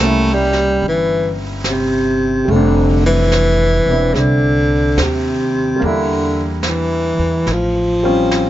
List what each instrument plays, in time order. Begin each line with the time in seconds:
Already playing: upright bass C2, upright piano G3, baritone saxophone A3
0.00 upright piano A#3 C#4
0.06 upright piano E4
0.34 baritone saxophone G3
0.53 snare
0.81 upright bass G1, brush sweep
0.88 baritone saxophone E3
1.64 snare, hi-hat pedal
1.70 baritone saxophone C3
2.45 upright bass F1, upright piano G3 A3, brush sweep
2.51 baritone saxophone D3, upright piano C4
2.56 upright piano D4
3.06 baritone saxophone E3
3.32 snare, hi-hat pedal
3.86 upright bass E1, upright piano C4 D4
3.91 upright piano E4
4.14 upright bass C2, baritone saxophone C#3, brush sweep, snare
4.19 baritone saxophone D3
4.97 upright bass D#2, snare, hi-hat pedal
5.03 baritone saxophone C3
5.76 upright piano G3 A#3
5.81 upright bass E2, upright piano D4, brush sweep
5.86 baritone saxophone D3, upright piano E4
6.63 snare, hi-hat pedal
6.68 baritone saxophone E3
7.19 upright bass E2
7.47 upright bass A1, brush sweep, snare
7.53 baritone saxophone F3
8.03 upright piano G3 C4 C#4 F4
8.31 snare, hi-hat pedal